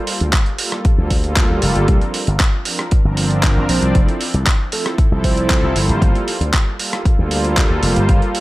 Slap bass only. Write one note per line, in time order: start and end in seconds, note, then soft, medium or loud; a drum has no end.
0.21 0.30 D2 medium
0.98 1.50 D2 medium
1.50 1.60 D2 medium
1.63 1.73 F1 medium
1.76 1.86 G1 medium
1.88 1.99 C2 loud
2.28 2.37 G1 medium
2.92 muted slap bass stroke soft
3.05 3.56 G1 loud
3.57 3.66 G1 loud
3.69 3.79 A#1 medium
3.82 3.92 C2 medium
3.95 4.05 F1 medium
4.34 4.44 C2 medium
5.12 5.63 C2 loud
5.63 5.73 C2 medium
5.75 5.86 G1 medium
5.89 5.99 G1 medium
6.02 6.12 G1 loud
6.41 6.51 D2 medium
7.05 muted slap bass stroke soft
7.19 7.70 D2 loud
7.70 7.80 D2 loud
7.83 7.93 F1 medium
7.97 8.06 G1 medium
8.09 8.19 G1 loud